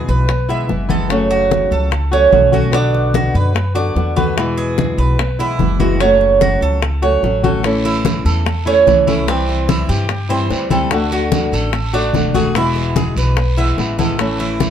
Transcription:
Already playing: nylon-string guitar B2 E3 G#3 B3 E4
0.08 upright bass B1, cuban tres B4, high conga
0.28 muted nylon-string guitar stroke, high bongo, high conga
0.49 nylon-string guitar E3 G#3 B3 E4, cuban tres E5, high bongo, high conga
0.69 upright bass F#1, nylon-string guitar E3 G#3 B3 E4, high bongo, low bongo, high conga
0.89 nylon-string guitar E3 G#3 B3 E4, cuban tres A4, high bongo, high conga
1.09 nylon-string guitar C#3 F#3 A3 C#4 F#4, high bongo, high conga
1.31 cuban tres F#4, high bongo, high conga
1.51 high bongo, high conga
1.71 upright bass C#2, cuban tres A4, high conga
1.91 muted nylon-string guitar stroke, high bongo, high conga
2.11 nylon-string guitar F#3 A3 C#4 F#4, cuban tres C#4, high bongo, high conga
2.31 upright bass B1, nylon-string guitar F#3 A3 C#4 F#4, high bongo, low bongo, high conga
2.52 nylon-string guitar F#3 A3 C#4 F#4, cuban tres F#4, high bongo, high conga
2.71 nylon-string guitar B2 D3 B3 D4 F#4, cuban tres D4, high bongo, high conga
2.94 high bongo, high conga
3.14 cuban tres F#4, high bongo, high conga
3.34 upright bass F#2, cuban tres B4, high conga
3.54 muted nylon-string guitar stroke, high bongo, high conga
3.75 nylon-string guitar D3 B3 D4 F#4, cuban tres D5, high bongo, high conga
3.96 upright bass E2, nylon-string guitar D3 B3 D4 F#4, high bongo, low bongo, high conga
4.16 nylon-string guitar D3 B3 D4 F#4, cuban tres B4, high bongo, high conga
4.37 nylon-string guitar B2 E3 G#3 B3 E4, high bongo, high conga
4.58 cuban tres G#4, high bongo, high conga
4.78 high bongo, high conga
4.98 upright bass B1, cuban tres B4, high conga
5.19 muted nylon-string guitar stroke, high bongo, high conga
5.39 nylon-string guitar E3 G#3 B3 E4, cuban tres E4, high bongo, high conga
5.59 upright bass F#1, nylon-string guitar E3 G#3 B3 E4, high bongo, low bongo, high conga
5.80 nylon-string guitar E3 G#3 B3 E4, cuban tres F#4, high bongo, high conga
6.00 nylon-string guitar C#3 F#3 A3 C#4 F#4, cuban tres C#4, high bongo, high conga
6.21 high bongo, high conga
6.41 cuban tres F#4, high bongo, high conga
6.61 upright bass C#2, cuban tres A4, high conga
6.82 muted nylon-string guitar stroke, high bongo, high conga
7.02 nylon-string guitar F#3 A3 C#4 F#4, cuban tres C#5, high bongo, high conga
7.22 upright bass A1, nylon-string guitar F#3 A3 C#4 F#4, high bongo, low bongo, high conga
7.44 nylon-string guitar F#3 A3 C#4 F#4, cuban tres A4, high bongo, high conga
7.63 nylon-string guitar E3 A3 C#4 E4, high bongo, high conga, long guiro
7.85 cuban tres E4, high bongo, high conga
8.05 high bongo, high conga, short guiro
8.25 upright bass E2, cuban tres A4, high conga, short guiro
8.46 muted nylon-string guitar stroke, high bongo, high conga, long guiro
8.66 nylon-string guitar A3 C#4 E4, cuban tres C#4, high bongo, high conga
8.86 upright bass C2, nylon-string guitar E3 A3 C#4 E4, high bongo, low bongo, high conga, short guiro
9.07 nylon-string guitar A3 C#4 E4, cuban tres E4, high bongo, high conga, short guiro
9.27 nylon-string guitar C3 E3 G3 C4 E4, cuban tres C4, high bongo, high conga, long guiro
9.49 high bongo, high conga
9.69 cuban tres E4, high bongo, high conga, short guiro
9.89 upright bass G2, cuban tres G4, high conga, short guiro
10.09 muted nylon-string guitar stroke, high bongo, high conga, long guiro
10.29 nylon-string guitar E3 G3 C4 E4, cuban tres C5, high bongo, high conga
10.50 upright bass D2, nylon-string guitar E3 G3 C4 E4, high bongo, low bongo, high conga, short guiro
10.70 nylon-string guitar E3 G3 C4 E4, cuban tres A4, high bongo, high conga, short guiro
10.91 nylon-string guitar D3 A3 D4 F#4, high bongo, high conga, long guiro
11.12 cuban tres F#4, high bongo, high conga
11.32 high bongo, high conga, short guiro
11.52 upright bass A1, cuban tres A4, high conga, short guiro
11.73 muted nylon-string guitar stroke, high bongo, high conga, long guiro
11.93 nylon-string guitar A3 D4 F#4, cuban tres D4, high bongo, high conga
12.13 upright bass E1, nylon-string guitar D3 A3 D4 F#4, high bongo, low bongo, high conga, short guiro
12.34 nylon-string guitar A3 D4 F#4, cuban tres G#4, high bongo, high conga, short guiro
12.55 nylon-string guitar B2 E3 G#3 B3 E4, cuban tres E4, high bongo, high conga, long guiro
12.76 high bongo, high conga
12.96 cuban tres G#4, high bongo, high conga, short guiro
13.16 upright bass B1, cuban tres B4, high conga, short guiro
13.37 muted nylon-string guitar stroke, high bongo, high conga, long guiro
13.57 nylon-string guitar E3 G#3 B3 E4, cuban tres E5, high bongo, high conga
13.77 upright bass A1, nylon-string guitar E3 G#3 B3 E4, high bongo, low bongo, high conga, short guiro
13.99 nylon-string guitar E3 G#3 B3 E4, cuban tres A4, high bongo, high conga, short guiro
14.18 nylon-string guitar E3 A3 C#4 E4, high bongo, high conga, long guiro
14.40 cuban tres E4, high bongo, high conga
14.60 high bongo, high conga, short guiro

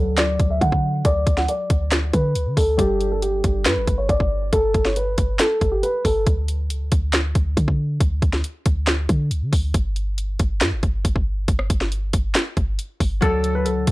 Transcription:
Already playing: 808-style bass D2, harp F#3 D4 A4, grand piano A4
0.17 grand piano D5, snare, clap, closed hi-hat
0.40 808-style bass D2, kick, closed hi-hat
0.50 grand piano E5
0.61 808-style bass D3, grand piano F#5, kick, closed hi-hat
0.72 kick
1.05 808-style bass D2, grand piano D5, kick, closed hi-hat
1.27 808-style bass D2, kick, closed hi-hat
1.37 grand piano F#5, snare
1.48 grand piano D5, closed hi-hat
1.70 808-style bass D2, kick, closed hi-hat
1.91 snare, clap, closed hi-hat
2.13 808-style bass D3, grand piano B4, kick, closed hi-hat
2.35 808-style bass C#2, closed hi-hat
2.46 808-style bass D3
2.57 808-style bass D2, grand piano A4, kick, open hi-hat
2.77 808-style bass G1, harp G3 D4 A4, grand piano G4, kick, closed hi-hat
3.01 closed hi-hat
3.12 grand piano A4
3.22 grand piano G4, closed hi-hat
3.44 808-style bass G1, kick, closed hi-hat
3.65 808-style bass G2, grand piano B4, snare, clap, closed hi-hat
3.77 808-style bass G1
3.87 808-style bass G1, kick, closed hi-hat
3.98 grand piano C#5
4.09 808-style bass G1, grand piano D5, kick, closed hi-hat
4.20 kick
4.53 808-style bass G1, grand piano A4, kick, closed hi-hat
4.74 808-style bass G1, kick, closed hi-hat
4.85 grand piano C#5, snare
4.96 grand piano B4, closed hi-hat
5.18 808-style bass G1, kick, closed hi-hat
5.39 grand piano A4, snare, clap, closed hi-hat
5.61 808-style bass G1, kick, closed hi-hat
5.72 grand piano G4
5.83 grand piano B4, closed hi-hat
6.05 808-style bass G1, grand piano A4, kick, open hi-hat
6.27 808-style bass D2, kick, closed hi-hat
6.48 closed hi-hat
6.70 808-style bass C#2, closed hi-hat
6.81 808-style bass D2
6.92 808-style bass D2, kick, closed hi-hat
7.13 snare, clap, closed hi-hat
7.35 808-style bass D2, kick, closed hi-hat
7.57 808-style bass D3, kick, closed hi-hat
7.68 kick
8.00 808-style bass D2, kick, closed hi-hat
8.22 808-style bass D2, kick, closed hi-hat
8.33 snare
8.44 closed hi-hat
8.66 808-style bass D2, kick, closed hi-hat
8.87 snare, clap, closed hi-hat
9.09 808-style bass D3, kick, closed hi-hat
9.31 808-style bass C#2, closed hi-hat
9.42 808-style bass D3
9.53 808-style bass D2, kick, open hi-hat
9.74 808-style bass G1, kick, closed hi-hat
9.96 closed hi-hat
10.18 closed hi-hat
10.39 808-style bass G1, kick, closed hi-hat
10.61 808-style bass G2, snare, clap, closed hi-hat
10.72 808-style bass G1
10.83 808-style bass G1, kick, closed hi-hat
11.05 808-style bass G1, kick, closed hi-hat
11.16 kick
11.48 808-style bass G1, kick, closed hi-hat
11.59 cross-stick
11.70 808-style bass G1, kick, closed hi-hat
11.81 snare
11.92 closed hi-hat
12.13 808-style bass G1, kick, closed hi-hat
12.35 snare, clap, closed hi-hat
12.57 808-style bass G1, kick, closed hi-hat
12.79 closed hi-hat
13.00 808-style bass G1, kick, open hi-hat
13.21 808-style bass D2, analog synth pad D3 D4 F#4, harp F#3 D4 A4, grand piano A4, kick, closed hi-hat
13.44 closed hi-hat
13.55 grand piano B4
13.65 808-style bass C#2, grand piano A4, closed hi-hat
13.77 808-style bass D2
13.87 808-style bass D2, kick, closed hi-hat

